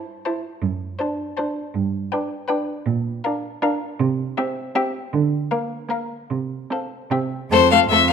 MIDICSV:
0, 0, Header, 1, 5, 480
1, 0, Start_track
1, 0, Key_signature, -1, "major"
1, 0, Tempo, 376412
1, 803, Time_signature, 3, 2, 24, 8
1, 7041, Tempo, 396825
1, 10193, End_track
2, 0, Start_track
2, 0, Title_t, "Violin"
2, 0, Program_c, 0, 40
2, 0, Note_on_c, 0, 81, 49
2, 199, Note_off_c, 0, 81, 0
2, 327, Note_on_c, 0, 81, 59
2, 683, Note_off_c, 0, 81, 0
2, 1287, Note_on_c, 0, 81, 58
2, 1641, Note_off_c, 0, 81, 0
2, 1750, Note_on_c, 0, 81, 62
2, 2112, Note_off_c, 0, 81, 0
2, 2708, Note_on_c, 0, 79, 68
2, 3060, Note_off_c, 0, 79, 0
2, 3172, Note_on_c, 0, 79, 72
2, 3530, Note_off_c, 0, 79, 0
2, 4139, Note_on_c, 0, 77, 69
2, 4497, Note_off_c, 0, 77, 0
2, 4630, Note_on_c, 0, 77, 79
2, 4985, Note_off_c, 0, 77, 0
2, 5584, Note_on_c, 0, 76, 67
2, 5944, Note_off_c, 0, 76, 0
2, 6072, Note_on_c, 0, 76, 76
2, 6432, Note_off_c, 0, 76, 0
2, 7038, Note_on_c, 0, 77, 63
2, 7388, Note_off_c, 0, 77, 0
2, 7512, Note_on_c, 0, 77, 64
2, 7872, Note_off_c, 0, 77, 0
2, 8497, Note_on_c, 0, 77, 53
2, 8850, Note_off_c, 0, 77, 0
2, 8976, Note_on_c, 0, 76, 59
2, 9333, Note_off_c, 0, 76, 0
2, 9468, Note_on_c, 0, 72, 98
2, 9683, Note_off_c, 0, 72, 0
2, 9698, Note_on_c, 0, 77, 94
2, 9792, Note_off_c, 0, 77, 0
2, 9924, Note_on_c, 0, 76, 89
2, 10156, Note_off_c, 0, 76, 0
2, 10193, End_track
3, 0, Start_track
3, 0, Title_t, "Violin"
3, 0, Program_c, 1, 40
3, 0, Note_on_c, 1, 72, 50
3, 200, Note_off_c, 1, 72, 0
3, 327, Note_on_c, 1, 72, 58
3, 682, Note_off_c, 1, 72, 0
3, 1263, Note_on_c, 1, 72, 57
3, 1628, Note_off_c, 1, 72, 0
3, 1750, Note_on_c, 1, 72, 60
3, 2112, Note_off_c, 1, 72, 0
3, 2706, Note_on_c, 1, 71, 60
3, 3059, Note_off_c, 1, 71, 0
3, 3164, Note_on_c, 1, 71, 69
3, 3526, Note_off_c, 1, 71, 0
3, 4136, Note_on_c, 1, 70, 66
3, 4495, Note_off_c, 1, 70, 0
3, 4620, Note_on_c, 1, 70, 73
3, 4979, Note_off_c, 1, 70, 0
3, 5577, Note_on_c, 1, 67, 64
3, 5941, Note_off_c, 1, 67, 0
3, 6065, Note_on_c, 1, 67, 76
3, 6428, Note_off_c, 1, 67, 0
3, 7030, Note_on_c, 1, 70, 60
3, 7383, Note_off_c, 1, 70, 0
3, 7499, Note_on_c, 1, 70, 65
3, 7865, Note_off_c, 1, 70, 0
3, 8491, Note_on_c, 1, 69, 56
3, 8847, Note_off_c, 1, 69, 0
3, 8971, Note_on_c, 1, 67, 62
3, 9331, Note_off_c, 1, 67, 0
3, 9466, Note_on_c, 1, 69, 71
3, 9559, Note_off_c, 1, 69, 0
3, 9706, Note_on_c, 1, 69, 60
3, 9798, Note_off_c, 1, 69, 0
3, 9942, Note_on_c, 1, 69, 56
3, 10033, Note_off_c, 1, 69, 0
3, 10193, End_track
4, 0, Start_track
4, 0, Title_t, "Viola"
4, 0, Program_c, 2, 41
4, 0, Note_on_c, 2, 64, 54
4, 202, Note_off_c, 2, 64, 0
4, 333, Note_on_c, 2, 64, 61
4, 686, Note_off_c, 2, 64, 0
4, 1275, Note_on_c, 2, 62, 58
4, 1634, Note_off_c, 2, 62, 0
4, 1767, Note_on_c, 2, 62, 61
4, 2121, Note_off_c, 2, 62, 0
4, 2717, Note_on_c, 2, 62, 63
4, 3065, Note_off_c, 2, 62, 0
4, 3180, Note_on_c, 2, 62, 70
4, 3534, Note_off_c, 2, 62, 0
4, 4156, Note_on_c, 2, 62, 65
4, 4506, Note_off_c, 2, 62, 0
4, 4622, Note_on_c, 2, 62, 76
4, 4981, Note_off_c, 2, 62, 0
4, 5584, Note_on_c, 2, 60, 68
4, 5944, Note_off_c, 2, 60, 0
4, 6063, Note_on_c, 2, 60, 74
4, 6427, Note_off_c, 2, 60, 0
4, 7038, Note_on_c, 2, 58, 60
4, 7388, Note_off_c, 2, 58, 0
4, 7489, Note_on_c, 2, 58, 60
4, 7859, Note_off_c, 2, 58, 0
4, 8473, Note_on_c, 2, 60, 56
4, 8837, Note_off_c, 2, 60, 0
4, 8964, Note_on_c, 2, 60, 58
4, 9327, Note_off_c, 2, 60, 0
4, 9447, Note_on_c, 2, 57, 65
4, 9544, Note_off_c, 2, 57, 0
4, 9690, Note_on_c, 2, 57, 59
4, 9786, Note_off_c, 2, 57, 0
4, 9929, Note_on_c, 2, 57, 61
4, 10023, Note_off_c, 2, 57, 0
4, 10193, End_track
5, 0, Start_track
5, 0, Title_t, "Cello"
5, 0, Program_c, 3, 42
5, 793, Note_on_c, 3, 42, 67
5, 1174, Note_off_c, 3, 42, 0
5, 2224, Note_on_c, 3, 43, 72
5, 2607, Note_off_c, 3, 43, 0
5, 3647, Note_on_c, 3, 46, 81
5, 4036, Note_off_c, 3, 46, 0
5, 5102, Note_on_c, 3, 48, 84
5, 5481, Note_off_c, 3, 48, 0
5, 6543, Note_on_c, 3, 50, 83
5, 6934, Note_off_c, 3, 50, 0
5, 7988, Note_on_c, 3, 48, 66
5, 8378, Note_off_c, 3, 48, 0
5, 8958, Note_on_c, 3, 48, 59
5, 9346, Note_off_c, 3, 48, 0
5, 9448, Note_on_c, 3, 41, 75
5, 9871, Note_off_c, 3, 41, 0
5, 9917, Note_on_c, 3, 41, 75
5, 10193, Note_off_c, 3, 41, 0
5, 10193, End_track
0, 0, End_of_file